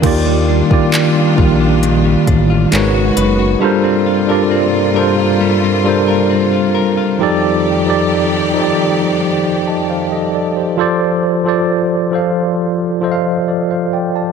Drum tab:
CC |x---------------|----------------|----------------|----------------|
HH |x---x---x-x-x-x-|----------------|----------------|----------------|
CP |----x-------x---|----------------|----------------|----------------|
BD |o--o--o---o-----|----------------|----------------|----------------|